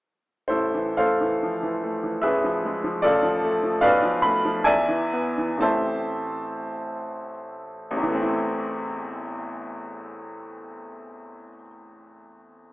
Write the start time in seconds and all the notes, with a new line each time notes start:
0.48 A1 E4 A4 C5
0.74 E3
0.97 A3 A4 C5 F5
1.21 E3
1.42 F3
1.62 E3
1.83 A3
2.03 E3
2.22 A1 G#4 B4 E5
2.44 F3
2.65 G#3
2.84 F3
3.02 A1 F4 A4 D5
3.23 F3
3.44 A3
3.63 F3
3.81 B1 B4 D5 F5
4.03 F3
4.22 A3 B5
4.45 F3
4.64 E2 D5 E5 G#5
4.88 E3
5.13 B3
5.38 E3
5.57 A1 E3 A3 A5
5.61 C4 C5 E5
7.91 A1
7.97 E2
8.03 E3
8.09 A3
8.15 C4
8.21 E4